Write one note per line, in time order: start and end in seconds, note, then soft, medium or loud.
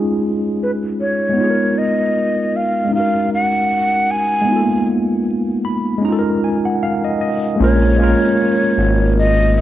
0.00 1.28 G#3 medium
0.00 1.32 C#4 medium
0.00 1.34 D#4 medium
0.00 1.36 F4 medium
0.00 1.37 G#4 medium
0.63 0.71 B4 medium
1.01 1.80 C#5 medium
1.29 2.84 G#3 medium
1.29 2.87 B3 medium
1.37 2.89 D#4 medium
1.37 2.91 F4 medium
1.44 1.47 G#4 medium
1.50 2.96 A#4 medium
1.78 2.58 D#5 medium
2.56 2.94 F5 medium
2.85 4.40 G#3 medium
2.85 4.43 C#4 soft
2.93 4.45 D#4 medium
2.93 4.47 F#4 soft
2.93 3.30 F5 medium
3.00 4.49 A#4 medium
3.34 4.12 F#5 medium
4.11 4.88 G#5 medium
4.41 5.97 G#3 medium
4.41 5.99 B3 medium
4.49 6.01 D#4 medium
4.49 6.03 F4 medium
4.56 4.59 A4 medium
4.62 6.08 A#3 medium
5.65 6.01 B5 medium
5.98 7.54 G#3 medium
5.98 7.55 C#4 medium
6.05 7.57 D#4 medium
6.05 7.59 F4 medium
6.05 6.41 A#5 medium
6.12 6.16 A4 medium
6.19 7.63 A#4 medium
6.44 6.64 G#5 medium
6.65 6.81 F#5 medium
6.83 7.02 F5 medium
7.04 7.20 D#5 medium
7.21 7.57 D#5 medium
7.56 7.95 G#3 medium
7.56 7.96 A#3 medium
7.56 7.96 C#4 medium
7.60 8.14 A#1 loud
7.60 7.98 F4 medium
7.60 7.99 A#4 medium
7.60 9.13 C#5 medium
7.96 9.44 G#3 medium
7.96 9.45 A#3 medium
7.96 9.46 C#4 medium
8.02 9.47 F4 medium
8.02 9.48 A#4 medium
8.78 9.61 G#1 loud
9.18 9.59 D#5 medium
9.58 9.61 F5 medium